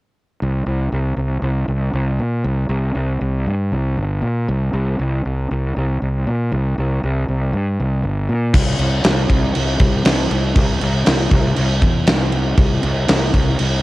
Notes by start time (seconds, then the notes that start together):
0.42 C2
0.66 C2
0.92 C2
1.16 C2
1.42 C2
1.68 C2
1.93 C2
2.19 A#2
2.44 C2
2.69 C2
2.95 C2
3.21 C2
3.47 G2
3.72 C2
3.97 G1
4.22 A#2
4.48 C2
4.73 C2
4.99 C2
5.25 C2
5.51 C2
5.76 C2
6.02 C2
6.27 A#2
6.52 C2
6.78 C2
7.03 C2
7.28 C2
7.53 G2
7.80 C2
8.03 G1
8.29 A#2
8.54 C2, kick, crash
8.79 C2, crash
9.04 C2, snare, crash
9.30 C2, kick, crash
9.55 C2, crash
9.79 C2, kick, crash
10.05 C2, snare, crash
10.31 C2, crash
10.55 C2, kick, crash
10.81 C2, crash
11.06 C2, snare, crash
11.31 C2, kick, crash
11.56 C2, crash
11.82 E2, kick, crash
12.07 C2, snare, crash
12.32 crash
12.57 C2, kick, crash
12.83 C2, crash
13.08 C2, snare, crash
13.34 C2, kick, crash
13.59 C2, crash